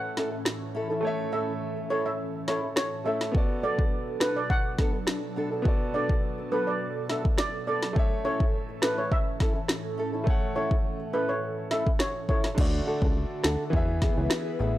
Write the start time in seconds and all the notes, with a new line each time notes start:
Already playing: A2 E3 A3 C#4 A4 C#5 E5 F#5
0.17 C#4 E4 A4, snare
0.32 muted steel-string acoustic guitar stroke
0.45 cross-stick, snare
0.75 C#4 E4 A4
0.90 C#4 E4 A4
1.01 A3 A4
1.05 C#5 E5
1.32 C#4 E4 A4 E5
1.77 muted steel-string acoustic guitar stroke
1.90 C#4 E4 A4 C#5
2.06 E5
2.48 C#4 E4 A4 C#5, snare
2.63 muted steel-string acoustic guitar stroke
2.76 C#5, cross-stick, snare
3.04 A3 C#4 E4 A4 C#5 E5
3.21 snare
3.32 B2 F#3 B3 D4 F#4, kick
3.36 A4 D5
3.63 B3 D4 A4 D5
3.79 kick
4.07 muted steel-string acoustic guitar stroke
4.20 B3 D4 A4 B4, cross-stick, snare
4.36 D5
4.50 F#5, kick
4.78 B3 D4 A4, kick, snare
4.94 muted steel-string acoustic guitar stroke
5.07 cross-stick, snare
5.36 B3 D4 A4
5.51 B3 D4 A4
5.62 B3 F#4, kick
5.66 A4 D5
5.94 B3 D4 A4 D5
6.09 kick
6.38 muted steel-string acoustic guitar stroke
6.51 B3 D4 A4 B4
6.67 D5
7.09 B3 D4 A4 E5, snare
7.25 muted steel-string acoustic guitar stroke, kick
7.38 D5, cross-stick, snare
7.67 B3 D4 A4 D5
7.83 snare
7.93 A2 E3 A3 C#4 A4, kick
7.97 C#5 E5
8.25 C#4 E4 A4 C#5
8.40 kick
8.69 muted steel-string acoustic guitar stroke
8.82 C#4 E4 A4 B4, cross-stick, snare
8.98 C#5
9.12 E5, kick
9.40 C#4 E4 A4, kick, snare
9.55 muted steel-string acoustic guitar stroke
9.68 cross-stick, snare
9.98 C#4 E4 A4
10.13 C#4 E4 A4
10.24 A3 A4 C#5, kick
10.30 F#5
10.55 C#4 E4 A4 C#5
10.71 kick
11.00 muted steel-string acoustic guitar stroke
11.13 C#4 E4 A4 B4
11.29 C#5
11.71 C#4 E4 A4 E5, snare
11.86 muted steel-string acoustic guitar stroke, kick
11.99 C#5, cross-stick, snare
12.28 C#4 E4 A4 C#5, kick
12.44 snare
12.55 D2 D3 A3 D4 F#4 A4, kick, crash
12.59 F#4 D5
12.86 D4 F#4 A4
13.02 C#2, kick
13.44 D2 D4 F#4 A4, cross-stick, snare
13.70 E2 E3 B3 E4 G#4 B4, kick
13.76 E5
14.01 B3 E4 G#4, kick, snare
14.17 C#2 B3 E4 G#4
14.30 cross-stick, snare
14.59 A1 B3 E4 G#4